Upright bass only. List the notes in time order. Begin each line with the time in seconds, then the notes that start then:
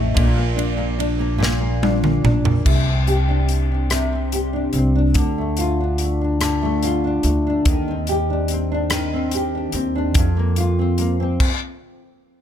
Already playing: A1
0.17 A#1
2.24 A#1
2.66 C2
4.73 C2
5.15 D2
7.24 D2
7.66 D#2
9.73 D#2
10.15 F2